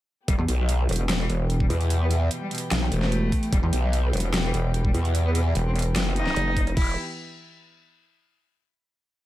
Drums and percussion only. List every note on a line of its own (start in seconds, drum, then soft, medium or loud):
0.28 kick loud
0.28 closed hi-hat medium
0.48 closed hi-hat medium
0.69 closed hi-hat medium
0.89 closed hi-hat medium
0.93 closed hi-hat medium
0.96 closed hi-hat medium
1.09 snare loud
1.09 closed hi-hat medium
1.30 closed hi-hat medium
1.50 closed hi-hat medium
1.60 kick medium
1.70 open hi-hat loud
1.81 closed hi-hat soft
1.90 closed hi-hat medium
2.11 closed hi-hat medium
2.31 closed hi-hat medium
2.51 closed hi-hat medium
2.55 closed hi-hat medium
2.58 closed hi-hat medium
2.71 snare loud
2.71 closed hi-hat medium
2.92 closed hi-hat medium
3.02 snare soft
3.12 closed hi-hat medium
3.32 kick medium
3.32 open hi-hat medium
3.43 closed hi-hat soft
3.53 kick loud
3.53 closed hi-hat medium
3.73 closed hi-hat medium
3.93 closed hi-hat medium
4.13 closed hi-hat medium
4.17 closed hi-hat medium
4.20 closed hi-hat medium
4.34 snare loud
4.34 closed hi-hat medium
4.54 closed hi-hat medium
4.74 closed hi-hat medium
4.85 kick medium
4.94 open hi-hat medium
5.05 closed hi-hat soft
5.15 closed hi-hat medium
5.35 closed hi-hat medium
5.55 closed hi-hat medium
5.76 closed hi-hat soft
5.79 closed hi-hat medium
5.82 closed hi-hat medium
5.96 snare loud
5.96 closed hi-hat medium
6.16 closed hi-hat medium
6.27 snare soft
6.36 closed hi-hat medium
6.57 kick medium
6.57 open hi-hat medium
6.67 closed hi-hat soft
6.77 kick loud
6.77 crash medium